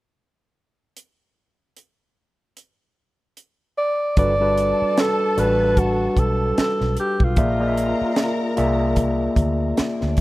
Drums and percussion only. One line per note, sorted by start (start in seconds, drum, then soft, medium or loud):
0.97 closed hi-hat medium
1.77 closed hi-hat soft
2.57 closed hi-hat soft
3.37 closed hi-hat soft
4.17 kick medium
4.17 closed hi-hat medium
4.58 closed hi-hat medium
4.97 snare loud
4.97 closed hi-hat medium
5.38 closed hi-hat medium
5.77 kick medium
5.77 closed hi-hat medium
6.17 kick medium
6.17 closed hi-hat medium
6.58 snare loud
6.58 closed hi-hat medium
6.81 snare soft
6.97 closed hi-hat medium
7.20 kick medium
7.36 kick loud
7.36 closed hi-hat medium
7.77 closed hi-hat medium
8.16 snare medium
8.16 closed hi-hat medium
8.57 closed hi-hat medium
8.96 kick medium
8.96 closed hi-hat medium
9.36 kick medium
9.36 closed hi-hat medium
9.77 snare loud
9.77 closed hi-hat medium
10.01 snare soft
10.17 kick medium
10.17 closed hi-hat medium